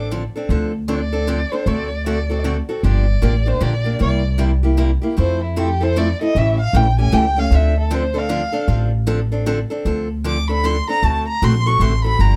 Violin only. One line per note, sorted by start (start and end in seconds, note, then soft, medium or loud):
0.90 1.53 D5 medium
1.52 1.69 C5 medium
1.68 2.06 D5 medium
2.07 2.43 D5 medium
2.84 3.49 D5 medium
3.47 3.64 C5 medium
3.62 4.01 D5 medium
4.02 4.38 D5 medium
5.19 5.41 C5 medium
5.44 5.60 E4 medium
5.59 5.84 G4 medium
5.83 5.99 C5 medium
5.98 6.21 D5 medium
6.22 6.39 D#5 medium
6.37 6.60 E5 medium
6.60 6.78 F5 medium
6.76 6.99 G5 medium
7.00 7.15 G#5 loud
7.14 7.40 G5 medium
7.39 7.56 F5 medium
7.55 7.78 E5 medium
7.80 7.96 A4 medium
7.94 8.20 C5 medium
8.18 8.71 F5 medium
10.27 10.48 D6 medium
10.51 10.67 B5 medium
10.66 10.89 C6 loud
10.90 11.07 A#5 loud
11.05 11.28 A5 medium
11.28 11.45 A#5 medium
11.44 11.68 C6 medium
11.67 11.83 C#6 loud
11.82 12.04 C6 medium
12.05 12.22 B5 loud
12.21 12.36 A#5 medium